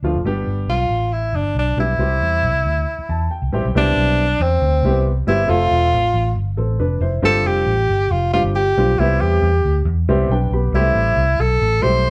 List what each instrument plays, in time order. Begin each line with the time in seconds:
0.02 fingered electric bass D2, grand piano F3 A3 D4 F4
0.14 fingered electric bass F1
0.24 fingered electric bass G1, grand piano G3 B3 D4 G4
0.47 fingered electric bass G1
0.67 fingered electric bass B1, tenor saxophone F4
0.89 fingered electric bass A1
1.13 tenor saxophone E4
1.33 fingered electric bass G1, tenor saxophone D4
1.55 fingered electric bass B1, tenor saxophone D4
1.77 fingered electric bass B1, grand piano G3 B3 D4 G4, tenor saxophone E4
1.98 fingered electric bass C2, grand piano G3 C4 E4 G4
2.21 fingered electric bass E2
2.43 fingered electric bass C2
2.65 fingered electric bass D2
2.99 muted fingered electric bass stroke
3.09 fingered electric bass E2, grand piano A5
3.31 grand piano G5
3.42 fingered electric bass C2
3.52 fingered electric bass A1, grand piano G3 C4 E4 G4 G5
3.65 fingered electric bass B1
3.75 fingered electric bass C2, grand piano G3 B3 C4 E4 G4, tenor saxophone D4
3.96 fingered electric bass B1
4.39 fingered electric bass E2, tenor saxophone C4
4.62 fingered electric bass D2
4.83 fingered electric bass C2, grand piano G3 B3 C4 E4 G4
5.27 fingered electric bass G1, grand piano G3 B3 C4 E4 G4, tenor saxophone E4
5.48 fingered electric bass F1, grand piano A3 C4 F4 A4 E5, tenor saxophone F4
5.71 fingered electric bass E1
5.93 fingered electric bass A1
6.14 fingered electric bass A1
6.36 fingered electric bass G1
6.57 fingered electric bass A1, grand piano C4 A4
6.80 fingered electric bass F1, grand piano D4 B4
7.01 fingered electric bass F1, grand piano E4 C5
7.22 fingered electric bass G1, grand piano G3 C4 D4 F4 G4, tenor saxophone A4
7.44 fingered electric bass F1, tenor saxophone G4
7.66 fingered electric bass A1
7.89 fingered electric bass G1
8.11 fingered electric bass F1, tenor saxophone F4
8.33 grand piano G3 C4 D4 F4 G4, tenor saxophone F4
8.44 fingered electric bass G1
8.55 tenor saxophone G4
8.77 fingered electric bass B1, grand piano G3 C4 D4 F4 G4
8.99 fingered electric bass C2, grand piano G3 B3 C4 E4 G4, tenor saxophone E4
9.20 fingered electric bass E2, tenor saxophone G4
9.42 fingered electric bass E2
9.64 fingered electric bass D2
9.85 fingered electric bass E2
10.08 fingered electric bass C2, grand piano G3 B3 C4 E4 G4 E5
10.29 fingered electric bass B1, grand piano D4 B4 G5
10.51 fingered electric bass B1, grand piano B3 G4 B5
10.72 fingered electric bass C2, grand piano G3 A3 C4 E4 G4, tenor saxophone E4
10.95 fingered electric bass A1
11.16 fingered electric bass C2
11.39 fingered electric bass B1, tenor saxophone A4
11.62 fingered electric bass A1
11.82 fingered electric bass B1, grand piano G3 A3 C4 E4 G4, tenor saxophone C5